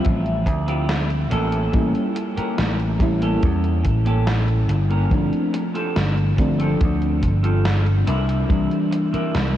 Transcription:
Already playing: F3 G3 C4 E5
0.05 A1, kick, closed hi-hat
0.26 closed hi-hat
0.46 D2, muted clean electric guitar stroke, kick, closed hi-hat
0.67 C4 E4 F4 G4, closed hi-hat
0.89 snare, closed hi-hat
1.10 closed hi-hat
1.30 A1 A#3 C#4 G4 A4, closed hi-hat
1.52 closed hi-hat
1.72 A1 G3 A#3 C#4 E4, kick, closed hi-hat
1.95 closed hi-hat
2.15 muted clean electric guitar stroke, closed hi-hat
2.36 A#3 C#4 G4 A#4, muted slap bass stroke, closed hi-hat
2.58 A1, snare, closed hi-hat
2.79 closed hi-hat
2.99 A1 G3 A#3 C#4 E4, muted clean electric guitar stroke, kick, closed hi-hat
3.21 A#3 C#4 G4 A4, closed hi-hat
3.43 E2, kick, closed hi-hat
3.64 closed hi-hat
3.84 A1, muted clean electric guitar stroke, kick, closed hi-hat
4.05 A#3 C#4 G4 A4, closed hi-hat
4.27 snare, closed hi-hat
4.48 closed hi-hat
4.69 G1, muted clean electric guitar stroke, closed hi-hat
4.90 A#3 C#4 G4 A#4, closed hi-hat
5.10 G1 F3 A3 C4 D4, kick, closed hi-hat
5.33 closed hi-hat
5.53 muted clean electric guitar stroke, closed hi-hat
5.74 C4 F4 G4 A4, closed hi-hat
5.96 G1, snare, closed hi-hat
6.17 closed hi-hat
6.37 G1 F3 A3 C4 D4, muted clean electric guitar stroke, kick, closed hi-hat
6.59 C4 F4 G4 A4, closed hi-hat
6.81 D2, kick, closed hi-hat
7.02 closed hi-hat
7.22 G1, muted clean electric guitar stroke, kick, closed hi-hat
7.43 C4 F4 G4 A4, closed hi-hat
7.65 snare, closed hi-hat
7.87 closed hi-hat
8.07 C2 C4 D4 E4 A#4, closed hi-hat
8.29 closed hi-hat
8.48 C2 E3 G3 A#3 D4, kick, closed hi-hat
8.71 closed hi-hat
8.91 muted clean electric guitar stroke, closed hi-hat
9.12 C4 D4 E4 A#4, muted slap bass stroke, closed hi-hat
9.35 C2, snare, closed hi-hat

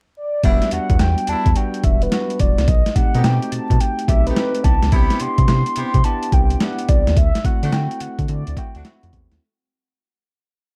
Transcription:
0.17 D5
0.43 E1 G3 B3 D4 E4 F#4 E5, kick, closed hi-hat
0.62 snare, closed hi-hat
0.71 E2 G3 B3 D4 F#4 F#5, closed hi-hat
0.90 E2, kick, closed hi-hat
0.99 E2 G5, snare, closed hi-hat
1.18 closed hi-hat
1.27 E2 G3 B3 D4 E4 A5, closed hi-hat
1.46 E2, kick, closed hi-hat
1.55 G3 B3 D4 F#4 G5, closed hi-hat
1.74 closed hi-hat
1.84 E1 E5, kick, closed hi-hat
2.02 B4, closed hi-hat
2.12 G3 B3 D4 F#4, snare, closed hi-hat
2.30 closed hi-hat
2.39 E1 D5, kick, closed hi-hat
2.58 C2, snare, closed hi-hat
2.68 B1 D#5, kick, closed hi-hat
2.86 snare, closed hi-hat
2.95 B2 A3 C4 D#4 G4 F#5, kick, closed hi-hat
3.14 B2 A3 C4 D#4 G4, closed hi-hat
3.24 B2 A3 C4 D#4 F#4 G5, snare, closed hi-hat
3.32 G4
3.42 closed hi-hat
3.52 B2 A5, closed hi-hat
3.70 B2, kick, closed hi-hat
3.80 G5, closed hi-hat
3.99 closed hi-hat
4.08 B1 A3 C4 D#4 G4 E5, kick, closed hi-hat
4.26 A3 C4 D#4 G4 B4, closed hi-hat
4.36 A3 C4 D#4 G4, snare, closed hi-hat
4.55 closed hi-hat
4.64 C2 B3 D4 E4 G4 A5, kick, closed hi-hat
4.83 C#2, snare, closed hi-hat
4.92 C2 B3 C4 E4 G4 B5, kick, closed hi-hat
5.10 snare, closed hi-hat
5.20 C3 B3 D4 E4 G4 C6, closed hi-hat
5.38 C3, kick, closed hi-hat
5.48 C3, snare, closed hi-hat
5.66 closed hi-hat
5.76 C3 B3 C4 E4 G4, closed hi-hat
5.94 C3, kick, closed hi-hat
6.04 B3 D4 E4 G4 A5, closed hi-hat
6.23 closed hi-hat
6.32 C2 G5, kick, closed hi-hat
6.50 closed hi-hat
6.60 B3 D4 E4 G4 F#5, snare, closed hi-hat
6.79 closed hi-hat
6.89 C2 D5, kick, closed hi-hat
7.07 D#2, snare, closed hi-hat
7.17 D2 E5, kick, closed hi-hat
7.35 snare, closed hi-hat
7.45 D3 A3 C4 E4 F#4 F#5, kick, closed hi-hat
7.63 D3 A3 C4 D4 F#4, closed hi-hat
7.72 D3 A3 C4 E4 F#4 G5, snare, closed hi-hat
7.91 closed hi-hat
8.00 D3 F#5, closed hi-hat
8.19 D3, kick, closed hi-hat
8.28 D3 D5, closed hi-hat
8.47 D2, closed hi-hat
8.57 A3 C4 E4 F#4 G5, kick, closed hi-hat
8.75 D2 A3 C4 D4 F#4 F#5, closed hi-hat
8.85 A3 C4 E4 F#4, snare, closed hi-hat
9.03 F2, closed hi-hat
9.13 E2, kick, closed hi-hat
9.31 D#2, snare, closed hi-hat

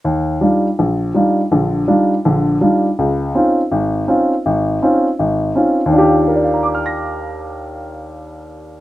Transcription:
0.04 D#2
0.41 G3 D4 D#4 F4
0.79 A#1
1.14 G3 D4 D#4 F4
1.51 A#1 D3
1.88 G3 D4 D#4 F4
2.25 A#1 D3
2.61 G3 D4 D#4 F4
2.99 C#2
3.35 C4 C#4 D#4 F4
3.72 G#1
4.08 C4 C#4 D#4 F4
4.46 G#1
4.82 C4 C#4 D#4 F4
5.20 G#1
5.55 C4 C#4 D#4 F4
5.86 D#2 D#3
5.92 D4 F4
5.98 G4
6.28 A#4
6.36 D5
6.44 F5
6.53 A#5
6.63 D6
6.75 F6
6.86 A#6

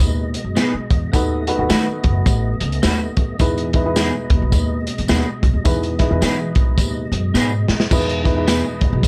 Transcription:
Already playing: B2 G#3 D#4 E4 G#4 B4 D#5
0.00 D#2, kick, closed hi-hat, tambourine
0.34 closed hi-hat
0.44 F#2
0.55 B3 D#4 G#4 B4, snare, closed hi-hat, tambourine
0.74 muted upright bass stroke
0.90 E2, kick, closed hi-hat
1.12 D#2 D#3 A3 B3 D#4 F#4 A4 B4 D#5, kick, closed hi-hat, tambourine
1.47 D#4 F#4 A4 B4, closed hi-hat
1.58 D#2 D#4 F#4 A4 B4
1.69 D#3 A3 D#4 F#4 B4, snare, closed hi-hat, tambourine
2.04 F#1, kick, closed hi-hat
2.26 A1, kick, closed hi-hat, tambourine
2.60 C#2, closed hi-hat
2.72 closed hi-hat
2.82 D#2 A3 D#4 F#4 B4, snare, closed hi-hat, tambourine
3.17 D#2, kick, closed hi-hat
3.38 E2 B2 E3 G#3 D#4 E4 G#4 B4, kick, closed hi-hat, tambourine
3.58 closed hi-hat
3.73 D#4 E4 G#4 B4, kick, closed hi-hat
3.84 D#4 E4 G#4 B4
3.96 B3 D#4 G#4 B4, snare, closed hi-hat, tambourine
4.30 D#2, kick, closed hi-hat
4.42 B1
4.52 D#2, kick, closed hi-hat, tambourine
4.87 closed hi-hat
4.98 E2, closed hi-hat
5.08 D#2 B3 D#4 G#4 B4, snare, closed hi-hat, tambourine
5.43 C#2, kick, closed hi-hat
5.54 D#2
5.64 E2 E3 D#4 E4 G#4 B4, kick, closed hi-hat, tambourine
5.83 closed hi-hat
5.99 D#4 E4 G#4 B4, kick, snare, closed hi-hat
6.10 E2 D#4 E4 G#4 B4
6.21 E3 B3 D#4 G#4 B4, snare, closed hi-hat, tambourine
6.55 B1, kick, closed hi-hat
6.78 D#2, kick, closed hi-hat, tambourine
7.12 F#2, closed hi-hat
7.34 G#2 B3 D#4 G#4 B4, snare, tambourine
7.68 D#2, snare
7.80 snare
7.91 E2 B2 E3 G#3 D#4 E4 G#4 B4 D#5, kick, crash, tambourine
8.09 closed hi-hat
8.24 D#4 E4 G#4 B4, kick, snare, closed hi-hat
8.35 D#4 E4 G#4 B4
8.47 B3 D#4 G#4 B4, snare, closed hi-hat, tambourine
8.81 D#2, kick, closed hi-hat
8.93 B1
9.03 D#2, kick, closed hi-hat, tambourine

